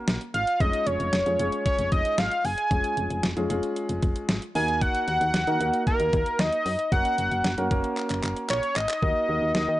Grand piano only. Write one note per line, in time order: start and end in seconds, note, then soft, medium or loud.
0.00 0.18 A#3 medium
0.00 0.18 C#4 medium
0.00 0.18 F#4 medium
0.00 0.18 A#4 loud
0.60 1.16 G#3 medium
0.60 1.16 C#4 medium
0.60 1.16 F4 medium
0.60 1.16 G#4 medium
1.26 1.37 G#3 medium
1.26 1.37 C#4 medium
1.26 1.37 F4 medium
1.26 1.37 G#4 medium
1.39 2.28 G#3 medium
1.39 2.28 C#4 medium
1.39 2.28 F4 medium
1.39 2.28 G#4 medium
2.71 3.26 G#3 medium
2.71 3.27 C#4 medium
2.71 3.26 F4 medium
2.71 3.27 G#4 medium
3.37 3.48 G#3 medium
3.37 3.48 C#4 medium
3.37 3.48 F4 medium
3.37 3.48 G#4 loud
3.50 4.39 G#3 medium
3.50 4.39 C#4 medium
3.50 4.39 F4 medium
3.50 4.39 G#4 loud
4.55 5.33 A#3 medium
4.55 5.33 D#4 medium
4.55 5.33 F#4 medium
4.55 5.33 A#4 medium
5.47 5.58 A#3 medium
5.47 5.58 D#4 medium
5.47 5.58 F#4 medium
5.47 5.58 A#4 medium
5.61 6.50 A#3 medium
5.61 6.50 D#4 medium
5.61 6.50 F#4 medium
5.61 6.50 A#4 medium
6.92 7.48 A#3 medium
6.92 7.48 C#4 medium
6.92 7.48 F#4 medium
6.92 7.48 A#4 medium
7.58 7.69 A#3 medium
7.58 7.69 C#4 medium
7.58 7.69 F#4 medium
7.58 7.69 A#4 medium
7.71 8.60 A#3 loud
7.71 8.60 C#4 medium
7.71 8.60 F#4 medium
7.71 8.60 A#4 loud
9.02 9.25 A#3 medium
9.02 9.25 D#4 medium
9.02 9.25 F#4 medium
9.02 9.25 A#4 medium
9.29 9.80 A#3 medium
9.29 9.80 D#4 medium
9.29 9.80 F#4 medium
9.29 9.80 A#4 medium